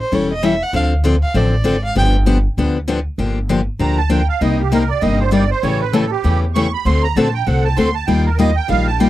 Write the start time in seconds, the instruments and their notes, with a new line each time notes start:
0.01 violin C5
0.12 upright bass E1, steel-string acoustic guitar E3 G3 C#4 E4 A4, violin C#5
0.33 violin D#5
0.43 steel-string acoustic guitar E3 G3 C#4 E4 A4, violin E5
0.63 violin F#5
0.73 upright bass D2, steel-string acoustic guitar D3 F3 C4 D4 A4, violin F5
1.04 steel-string acoustic guitar D3 F3 C4 D4 A4
1.23 violin F5
1.34 upright bass A1, steel-string acoustic guitar D3 F3 C4 D4 A4, violin D5
1.64 upright bass G#1, steel-string acoustic guitar D3 F3 C4 D4 A4
1.85 violin F5
1.95 upright bass G1, steel-string acoustic guitar D3 F3 B3 D4 G4, violin G5
2.26 steel-string acoustic guitar D3 F3 B3 D4 G4
2.57 upright bass D2, steel-string acoustic guitar D3 F3 B3 D4 G4
2.88 steel-string acoustic guitar D3 F3 B3 D4 G4
3.18 upright bass G1, steel-string acoustic guitar D3 F3 A#3 D4 G4
3.49 steel-string acoustic guitar D3 F3 A#3 D4 G4
3.79 upright bass D2, steel-string acoustic guitar D3 F3 A#3 D4 G4, accordion A#5
3.98 accordion A5
4.09 steel-string acoustic guitar D3 F3 A#3 D4 G4, accordion G5
4.29 accordion F5
4.41 upright bass C2, steel-string acoustic guitar C3 G3 A#3 D#4 G4, accordion D#5
4.59 accordion G4
4.72 steel-string acoustic guitar C3 G3 A#3 D#4 G4, accordion A#4
4.89 accordion D5
5.01 upright bass G1, steel-string acoustic guitar C3 G3 A#3 D#4 G4, accordion D#5
5.20 accordion C5
5.31 steel-string acoustic guitar C3 G3 A#3 D#4 G4, accordion D5
5.51 accordion C5
5.63 upright bass A1, steel-string acoustic guitar C#3 E3 A3 C#4 G4, accordion C#5
5.81 accordion B4
5.93 steel-string acoustic guitar C#3 E3 A3 C#4 G4, accordion A4
6.11 accordion G4
6.24 upright bass E2, steel-string acoustic guitar C#3 E3 A3 C#4 G4
6.54 steel-string acoustic guitar C#3 E3 A3 C#4 G4, accordion C#6
6.73 accordion B5
6.85 upright bass D2, steel-string acoustic guitar D3 A3 C4 F#4 A4, accordion C6
7.03 accordion A#5
7.16 upright bass A#1, steel-string acoustic guitar D3 A3 C4 F#4 A4, accordion A5
7.34 accordion G5
7.46 upright bass C2, steel-string acoustic guitar D3 A3 C4 F#4 A4, accordion F#5
7.65 accordion A5
7.77 upright bass D2, steel-string acoustic guitar D3 A3 C4 F#4 A4, accordion C6
7.95 accordion A5
8.07 upright bass D#2, steel-string acoustic guitar D#3 G3 A#3 F4 G4, accordion G5
8.25 accordion A#4
8.39 steel-string acoustic guitar D#3 G3 A#3 F4 G4, accordion D#5
8.56 accordion G5
8.68 upright bass A#1, steel-string acoustic guitar D#3 G3 A#3 F4 G4, accordion F5
8.87 accordion A5
9.00 steel-string acoustic guitar D#3 G3 A#3 F4 G4, accordion G5